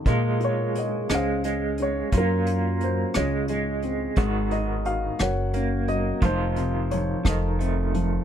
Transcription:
<<
  \new Staff \with { instrumentName = "Upright piano" } { \time 6/8 \key bes \minor \tempo 4. = 58 << { r8 des''8 ees''8 f''4 des''8 | bes'4 c''8 des''4 r8 | r8 ees''8 f''8 ges''4 ees''8 | c''4 des''8 ees''4 r8 | } \\ { r4. <aes' c''>4. | <des' f'>4. <f' aes'>4. | r4. <bes' des''>4. | ees'4. <a' c''>4. | } >> }
  \new Staff \with { instrumentName = "Upright piano" } { \clef bass \time 6/8 \key bes \minor bes8 f'8 aes'8 des'8 des'8 des'8 | ges8 ges8 ges8 des8 aes8 c'8 | aes8 ees'8 ges'8 ges8 des'8 ges8 | f8 c8 f8 f8 c'8 f8 | }
  \new Staff \with { instrumentName = "Clean electric guitar" } { \clef bass \time 6/8 \key bes \minor <aes f'>4. aes8 aes4 | <bes f'>4. aes8 aes4 | <ees ges'>4. r8 bes4 | <ees f'>4. ees8 a4 | }
  \new Staff \with { instrumentName = "Upright bass" } { \clef bass \time 6/8 \key bes \minor bes,4. des,4. | ges,4. des,4. | aes,,4. ges,,4. | f,,4. f,,4. | }
  \new DrumStaff \with { instrumentName = "Drums" } \drummode { \time 6/8 <hh bd>8 hh8 hh8 <hh ss>8 hh8 hh8 | <hh bd>8 hh8 hh8 <hh ss>8 hh8 hh8 | <hh bd>8 hh8 hh8 <hh ss>8 hh8 hh8 | <hh bd>8 hh8 hh8 <hh bd ss>8 hh8 hh8 | }
>>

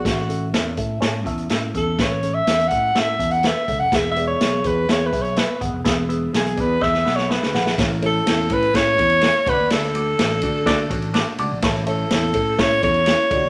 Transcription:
<<
  \new Staff \with { instrumentName = "Alto saxophone" } { \time 4/4 \key a \major \tempo 4 = 124 fis'4 r2 r8 a'8 | \tuplet 3/2 { cis''4 e''8~ e''8 fis''4 e''4 fis''8 e''4 fis''8 } | \tuplet 3/2 { e''8 e''8 cis''8~ } cis''8 b'8 \tuplet 3/2 { cis''8 b'8 cis''8 } b'8 r8 | r4 gis'8 b'8 \tuplet 3/2 { e''4 cis''8 } b'4 |
r8 a'4 b'8 cis''4. b'8 | a'2.~ a'8 r8 | r8 a'4. cis''8 cis''4. | }
  \new Staff \with { instrumentName = "Reed electric piano" } { \time 4/4 \key a \major <cis' a' e''>8 <cis' a' e''>8 <cis' a' e''>8 <cis' a' e''>8 <cis' a' cis''>8 <cis' a' e''>8 <cis' a' e''>8 <cis' a' e''>8 | <cis' a' b'>8 <cis' a' cis''>8 <cis' a' e''>8 <cis' a' e''>8 <cis' a' e''>8 <cis' a' e''>8 <cis' a' b'>8 <cis' a' e''>8 | <b gis' e''>8 <b gis' d''>8 <b gis' e''>8 <b gis' cis''>8 <b gis' e''>8 <b gis' e''>8 <b gis' e''>8 <b gis' fis''>8 | <b gis' e''>8 <b gis' e''>8 <b gis' e''>8 <b gis' d''>8 <b gis' e''>8 <b gis' fis''>8 <b gis' e''>8 <b gis' fis''>8 |
<a cis' e' cis''>8 <a cis' e' cis''>8 <a cis' e' cis''>8 <a cis' e' cis''>8 <a cis' e' cis''>8 <a cis' e' cis''>8 <a cis' e' cis''>8 <a d' fis' cis'' d''>8~ | <a d' fis' cis'' d''>8 <a d' fis' d''>8 <a d' fis' d''>8 <a d' fis' d''>8 <a d' fis' d''>8 <a d' fis' cis''>8 <a d' fis' d''>8 <a d' fis' d''>8 | <a cis' e' cis''>8 <a cis' e' cis''>8 <a cis' e' cis''>8 <a cis' e' a'>8 <a cis' e' cis''>8 <a cis' e' a'>8 <a cis' e' cis''>8 <a d' f' fis' d''>8 | }
  \new Staff \with { instrumentName = "Reed electric piano" } { \clef bass \time 4/4 \key a \major a,4. r2 r8 | a,4. r2 r8 | e4. r2 r8 | e4. r2 r8 |
a,4. r2 d8~ | d4 r2. | a,4. r2 d8 | }
  \new Staff \with { instrumentName = "Fingered electric bass" } { \clef bass \time 4/4 \key a \major a,,4 e,8 a,8 a,8 e,8 a,8 e,8 | a,,4 e,8 a,8 a,8 e,8. r16 cis,16 f,,16 | e,,4 b,,8 e,8 e,8 b,,8. r16 gis,,16 f,,16 | e,,4 b,,8 e,8 e,8 b,,8. d,16 bes,,8 |
a,,4 e,8 a,8 a,8 e,8. r16 d,16 dis,16 | d,4 a,,8 d8 d8 a,,8. r16 cis,16 bes,,16 | a,,4 e,8 a,8 a,8 e,8. r16 d,16 dis,16 | }
  \new DrumStaff \with { instrumentName = "Drums" } \drummode { \time 4/4 <hh bd sn>16 sn16 hh8 <hh sn>8 <hh bd>8 <hh sn>8 <hh bd>16 hh16 <hh sn>8 <hh bd>8 | <hh bd sn>8 hh8 <hh sn>16 hh16 <hh bd>8 <hh sn>8 <hh bd>16 hh16 <hh sn>8 <hh bd>8 | <hh bd sn>8 hh8 <hh sn>8 <hh bd>8 <hh sn>8 <hh bd>16 hh16 <hh sn>8 <hh bd>8 | <hh bd sn>8 hh8 <hh sn>16 hh16 <hh bd>8 <bd sn>16 sn16 sn16 sn16 sn16 sn16 sn16 sn16 |
<bd cymr sn>8 cymr8 <cymr sn>8 <bd cymr>16 cymr16 <bd cymr sn>8 <bd cymr>16 cymr16 <cymr sn>8 <bd cymr>8 | <cymr sn>16 sn16 cymr8 <cymr sn>8 <bd cymr>8 <bd cymr sn>8 <bd cymr>16 cymr16 <cymr sn>8 cymr8 | <bd cymr sn>16 sn16 cymr8 <cymr sn>8 <bd cymr>8 <bd cymr sn>8 <bd cymr>16 cymr16 <cymr sn>8 <bd cymr>8 | }
>>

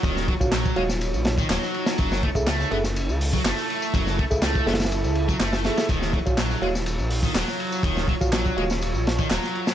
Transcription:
<<
  \new Staff \with { instrumentName = "Tine electric piano" } { \time 4/4 \key ees \minor \tempo 4 = 123 r8. <ges' des'' f''>16 r8 <ges' des'' f''>16 r2 r16 | r8. <aes' a' fes''>16 r8 <aes' a' fes''>16 r2 r16 | r8. <aes' a' fes''>16 r8 <aes' a' fes''>16 r4. r16 <aes' a' fes''>16 <aes' a' fes''>16 | r8. <ges' des'' f''>16 r8 <ges' des'' f''>16 r2 r16 |
r8. <ges' des'' f''>16 r8 <ges' des'' f''>16 r2 r16 | }
  \new Staff \with { instrumentName = "Ambient pad" } { \time 4/4 \key ees \minor <ges ees' des''>1 | <fes' a'>1~ | <fes' a'>1 | <ges f' des''>1~ |
<ges f' des''>1 | }
  \new Staff \with { instrumentName = "Distorted electric guitar" } { \clef bass \time 4/4 \key ees \minor ees8 ges16 r16 ges8 aes16 r4 ees16 ges4 | ges8 a16 r16 a8 ces'16 r4 ges16 a4 | ges8 a16 r16 a8 ces'16 r4 ges16 a4 | ees8 ges16 r16 ges8 aes16 r4 ees16 ges4 |
ees8 ges16 r16 ges8 aes16 r4 ees16 ges4 | }
  \new Staff \with { instrumentName = "Detuned saw bass" } { \clef bass \time 4/4 \key ees \minor ees,,8 r16 bes,,8 r16 ees,,8. bes,,8 r16 ees,,16 r8. | ges,,8 r16 des,8 r16 ges,,8. des,8 r16 ges,,16 r8. | ges,,8 r16 des,8 r16 ges,,8. des,8 r16 ges,,8 r8 | ees,,8 r16 bes,,8 r16 ees,,8. bes,,8 r16 ees,,16 r8. |
ees,,8 r16 bes,,8 r16 ees,,8. bes,,8 r16 ees,,16 r8. | }
  \new DrumStaff \with { instrumentName = "Drums" } \drummode { \time 4/4 <bd cymr tamb>16 <sn tamb>16 <bd cymr>16 <bd tamb>16 <hc cymr sn tamb>16 <bd tamb>16 cymr16 <sn tamb>16 <cymr tamb>16 tamb16 <cymr sn>16 <bd tamb>16 <hc cymr sn tamb>16 <sn tamb>16 cymr16 <cymr sn tamb>16 | <bd cymr tamb>16 <sn tamb>16 <bd cymr>16 <bd tamb>16 <hc cymr sn tamb>16 <sn tamb>16 cymr16 <sn tamb>16 <cymr tamb>16 tamb16 hho16 <bd tamb>16 <hc cymr sn tamb>16 <sn tamb>16 cymr16 <cymr tamb>16 | <bd cymr tamb>16 <sn tamb>16 <bd cymr>16 <bd tamb>16 <hc cymr sn tamb>16 <bd tamb>16 <cymr sn>32 <cymr sn>32 <cymr sn tamb>32 <cymr sn>32 <cymr tamb>16 tamb16 cymr16 <bd tamb>16 <hc cymr sn tamb>16 <cymr sn tamb>16 <cymr sn>16 <cymr sn tamb>16 | <bd cymr tamb>16 <sn tamb>16 <bd cymr>16 <bd tamb>16 <hc cymr sn tamb>16 <sn tamb>16 cymr16 <sn tamb>16 <cymr tamb>16 tamb16 hho16 <bd tamb>16 <hc cymr sn tamb>16 <sn tamb>16 cymr16 <cymr tamb>16 |
<bd cymr tamb>16 <sn tamb>16 <bd cymr>16 <bd tamb>16 <hc cymr sn tamb>16 <bd tamb>16 cymr16 <sn tamb>16 <cymr tamb>16 tamb16 <cymr sn>16 <bd tamb>16 <hc cymr sn tamb>16 <sn tamb>16 cymr16 <cymr sn tamb>16 | }
>>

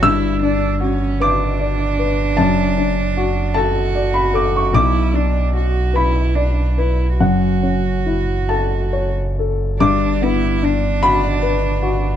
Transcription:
<<
  \new Staff \with { instrumentName = "Upright piano" } { \time 6/8 \key g \lydian \tempo 4. = 50 << { e'''4. d'''4. | a''4. a''8. b''16 d'''16 cis'''16 | d'''4. b''4. | fis''4. a''4. |
d'''4. b''4. | } \\ { g,8 d'8 fis'8 b'8 d''8 b'8 | fis,8 d'8 fis'8 a'8 d''8 a'8 | b,,8 d'8 fis'8 b'8 d''8 b'8 | fis,8 cis'8 e'8 a'8 cis''8 a'8 |
g,8 b8 d'8 fis'8 b'8 fis'8 | } >> }
  \new Staff \with { instrumentName = "Cello" } { \time 6/8 \key g \lydian e'8 d'8 cis'8 d'4.~ | d'4. fis'4. | e'8 d'8 fis'8 e'8 d'8 e'8 | fis'2~ fis'16 r8. |
d'8 e'8 d'2 | }
  \new Staff \with { instrumentName = "Sub bass" } { \clef bass \time 6/8 \key g \lydian g,,2. | fis,,2. | b,,2. | fis,,2. |
g,,2. | }
>>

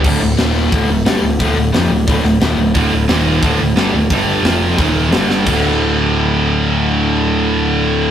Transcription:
<<
  \new Staff \with { instrumentName = "Distorted electric guitar" } { \clef bass \time 4/4 \key d \minor \tempo 4 = 177 <d, a, d>8 <d, a,>8 <ees, bes, ees>4 <d, a, d>8 <d, a,>8 <g, d g>8 <d, a,>8 | <d, a, d>8 <d, a,>8 <f, c f>8 <d, a,>8 <d, a, d>8 <d, a,>8 <ees, bes, ees>8 <d, a,>8 | <d, a, d>8 <d, a,>8 <ees, bes, ees>4 <d, a, d>8 <d, a,>8 <g, d g>8 <d, a,>8 | <g, d g>4 <f, c f>4 <ees, bes, ees>4 <g, d g>4 |
<d, a, d>1~ | <d, a, d>1 | }
  \new Staff \with { instrumentName = "Distorted electric guitar" } { \clef bass \time 4/4 \key d \minor r1 | r1 | <d, a, d>8 <d, a,>8 <ees, bes, ees>4 <d, a, d>8 <d, a,>8 <g, d g>8 <d, a,>8 | <g, d g>4 <f, c f>4 <ees, bes, ees>4 <g, d g>4 |
<d, a, d>1~ | <d, a, d>1 | }
  \new Staff \with { instrumentName = "Overdriven electric guitar" } { \clef bass \time 4/4 \key d \minor <d, a, d>8 <d, a,>8 <ees, bes, ees>4 <d, a, d>8 <d, a,>8 <g, d g>8 <d, a,>8 | <d, a, d>8 <d, a,>8 <f, c f>8 <d, a,>8 <d, a, d>8 <d, a,>8 <ees, bes, ees>8 <d, a,>8 | <d, a, d>8 <d, a,>8 <ees, bes, ees>4 <d, a, d>8 <d, a,>8 <g, d g>8 <d, a,>8 | <g, d g>4 <f, c f>4 <ees, bes, ees>4 <g, d g>4 |
<d, a, d>1~ | <d, a, d>1 | }
  \new Staff \with { instrumentName = "Picked electric bass" } { \clef bass \time 4/4 \key d \minor d,,8 d,,8 ees,,4 d,,8 d,,8 g,,8 d,,8 | d,,8 d,,8 f,,8 d,,8 d,,8 d,,8 ees,,8 d,,8 | d,,8 d,,8 ees,,4 d,,8 d,,8 g,,8 d,,8 | g,,4 f,,4 ees,,4 g,,4 |
d,,1~ | d,,1 | }
  \new DrumStaff \with { instrumentName = "Drums" } \drummode { \time 4/4 <cymc bd>4 <hho sn>4 <hho bd>4 <hho sn>4 | <hho bd>4 <hho sn>4 <hho bd>8 sn8 <hho sn>4 | <hho bd>4 <hho sn>4 <hho bd>4 <hho sn>4 | <hho bd>4 <hho sn>4 <hho bd>4 <hho sn>8 sn8 |
<cymc bd>4 r4 r4 r4 | r4 r4 r4 r4 | }
>>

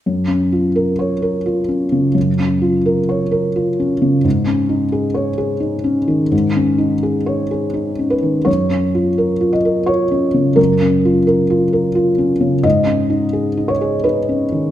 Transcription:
\new Staff \with { instrumentName = "Felt piano" } { \time 3/4 \key fis \major \tempo 4 = 86 << { r2. | r2. | r2. | r2 r8 b'8 |
cis''4. dis''8 cis''4 | ais'2 r4 | dis''4. cis''8 b'4 | } \\ { \tuplet 3/2 { fis,8 cis'8 eis'8 ais'8 cis''8 ais'8 eis'8 cis'8 cis8 } | \tuplet 3/2 { fis,8 cis'8 eis'8 ais'8 cis''8 ais'8 eis'8 cis'8 cis8 } | \tuplet 3/2 { gis,8 cis'8 dis'8 gis'8 cis''8 gis'8 dis'8 cis'8 dis8 } | \tuplet 3/2 { gis,8 cis'8 dis'8 gis'8 cis''8 gis'8 dis'8 cis'8 dis8 } |
\tuplet 3/2 { fis,8 cis'8 eis'8 ais'8 eis'8 ais'8 eis'8 cis'8 cis8 } | \tuplet 3/2 { fis,8 cis'8 eis'8 ais'8 eis'8 ais'8 eis'8 cis'8 cis8 } | \tuplet 3/2 { gis,8 cis'8 dis'8 gis'8 dis'8 gis'8 dis'8 cis'8 dis8 } | } >> }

